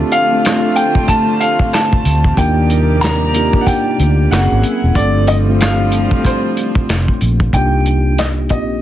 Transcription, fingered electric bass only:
2.05 D2
2.38 D#2
4.00 D2
4.32 F#1
4.52 G#1
4.83 E1
4.96 G1
6.90 F1
7.22 A#1
7.53 C2
8.51 A#1

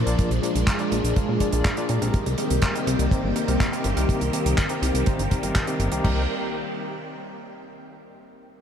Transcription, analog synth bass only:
0.07 A#1
0.31 A#1
0.55 A#1
0.92 A#1
1.04 A#1
1.29 A#2
1.53 A#1
1.90 A#2
2.02 A#1
2.26 C2
2.51 C2
2.87 C2
2.99 C2
3.24 G1
3.48 C2
3.85 G1
3.97 C2
4.21 C2
4.46 C2
4.82 C2
4.94 C2
5.19 G1
5.43 G1
5.80 G1
5.92 C2
6.05 C2

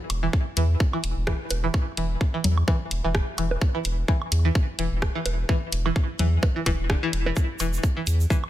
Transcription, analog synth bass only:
0.10 E1
0.57 E2
1.04 E1
1.17 E1
1.51 E1
1.97 E1
2.44 E2
2.91 E1
3.04 E1
3.38 E1
3.85 E1
4.32 E2
4.79 E1
4.92 E1
5.26 E1
5.72 E1
6.19 E2
6.66 E1
6.79 E1
7.13 E1
7.60 E1
8.07 E2

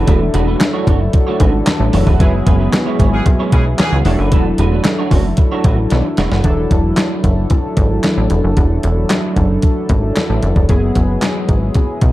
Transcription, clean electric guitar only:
0.07 A3 D4 F#4 B4
0.20 muted clean electric guitar stroke
0.34 A3 D4 F#4 B4
0.47 A3 D4 F#4 B4
0.60 muted clean electric guitar stroke
0.73 A3 D4 F#4 C#5
0.87 A3 D4 F#4 C#5
1.01 muted clean electric guitar stroke
1.14 muted clean electric guitar stroke
1.27 A3 D4 F#4 C#5
1.40 A3 D4 F#4 B4
1.53 muted clean electric guitar stroke
1.67 muted clean electric guitar stroke
1.80 muted clean electric guitar stroke
1.93 A3 D4 F#4 C#5
2.06 A3 D4 F#4 B4
2.20 G#3 C#4 E4 B4
2.33 muted clean electric guitar stroke
2.46 G#3 C#4 E4 B4
2.59 G#3 C#4 E4 B4
2.73 muted clean electric guitar stroke
2.86 G#3 C#4 E4 C#5
2.99 G#3 C#4 E4 C#5
3.12 muted clean electric guitar stroke
3.26 muted clean electric guitar stroke
3.39 G#3 C#4 E4 C#5
3.52 G#3 C#4 E4 B4
3.66 muted clean electric guitar stroke
3.79 muted clean electric guitar stroke
3.92 muted clean electric guitar stroke
4.06 A3 D4 F#4 C#5
4.19 A3 D4 F#4 B4
4.32 A3 D4 F#4 B4
4.46 muted clean electric guitar stroke
4.59 A3 D4 F#4 B4
4.72 A3 D4 F#4 B4
4.85 muted clean electric guitar stroke
4.99 A3 D4 F#4 C#5
5.12 A3 D4 F#4 C#5
5.25 muted clean electric guitar stroke
5.38 muted clean electric guitar stroke
5.52 A3 D4 F#4 C#5
5.65 A3 D4 F#4 B4
5.78 muted clean electric guitar stroke
5.91 muted clean electric guitar stroke
6.04 muted clean electric guitar stroke
6.18 A3 D4 F#4 C#5
6.31 A3 D4 F#4 B4

